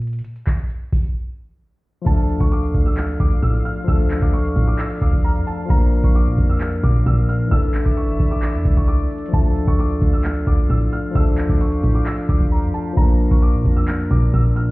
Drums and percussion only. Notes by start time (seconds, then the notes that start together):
0.02 closed hi-hat
0.07 closed hi-hat
0.13 closed hi-hat
0.19 closed hi-hat
0.24 closed hi-hat
0.36 closed hi-hat
0.47 kick, clap, closed hi-hat
0.58 closed hi-hat
0.70 closed hi-hat
0.93 kick, open hi-hat
1.04 closed hi-hat
2.06 kick, closed hi-hat, crash
2.18 closed hi-hat
2.29 closed hi-hat
2.40 kick, closed hi-hat
2.52 closed hi-hat
2.63 closed hi-hat
2.74 kick, closed hi-hat
2.97 clap, closed hi-hat
3.09 closed hi-hat
3.20 kick, closed hi-hat
3.31 closed hi-hat
3.43 kick, closed hi-hat
3.54 closed hi-hat
3.65 closed hi-hat
3.88 kick, closed hi-hat
4.00 closed hi-hat
4.11 clap, closed hi-hat
4.22 kick, closed hi-hat
4.34 closed hi-hat
4.45 closed hi-hat
4.56 kick, closed hi-hat
4.79 clap, closed hi-hat
4.90 closed hi-hat
5.02 kick, closed hi-hat
5.13 kick, closed hi-hat
5.24 closed hi-hat
5.36 closed hi-hat
5.47 closed hi-hat
5.70 kick, closed hi-hat
5.81 closed hi-hat
5.93 closed hi-hat
6.04 kick, closed hi-hat
6.15 closed hi-hat
6.27 closed hi-hat
6.38 kick, closed hi-hat
6.61 clap, closed hi-hat
6.72 closed hi-hat
6.83 kick, closed hi-hat
6.95 closed hi-hat
7.06 kick, closed hi-hat
7.18 closed hi-hat
7.29 closed hi-hat
7.52 kick, closed hi-hat
7.63 closed hi-hat
7.74 clap, closed hi-hat
7.86 kick, closed hi-hat
7.97 closed hi-hat
8.08 closed hi-hat
8.20 kick, open hi-hat
8.42 clap, closed hi-hat
8.54 closed hi-hat
8.65 kick, closed hi-hat
8.77 kick, closed hi-hat
8.88 closed hi-hat
8.99 closed hi-hat
9.11 closed hi-hat
9.18 closed hi-hat
9.26 closed hi-hat
9.33 kick, closed hi-hat
9.45 closed hi-hat
9.56 closed hi-hat
9.67 kick, closed hi-hat
9.79 closed hi-hat
9.90 closed hi-hat
10.02 kick, closed hi-hat
10.24 clap, closed hi-hat
10.36 closed hi-hat
10.47 kick, closed hi-hat
10.58 closed hi-hat
10.70 kick, closed hi-hat
10.81 closed hi-hat
10.92 closed hi-hat
11.15 kick, closed hi-hat
11.27 closed hi-hat
11.38 clap, closed hi-hat
11.49 kick, closed hi-hat
11.61 closed hi-hat
11.72 closed hi-hat
11.83 kick, closed hi-hat
12.06 clap, closed hi-hat
12.18 closed hi-hat
12.29 kick, closed hi-hat
12.40 kick, closed hi-hat
12.52 closed hi-hat
12.63 closed hi-hat
12.74 closed hi-hat
12.97 kick, closed hi-hat
13.08 closed hi-hat
13.20 closed hi-hat
13.31 kick, closed hi-hat
13.43 closed hi-hat
13.54 closed hi-hat
13.65 kick, closed hi-hat
13.88 clap, closed hi-hat
13.99 closed hi-hat
14.11 kick, closed hi-hat
14.22 closed hi-hat
14.33 kick, closed hi-hat
14.45 closed hi-hat
14.56 closed hi-hat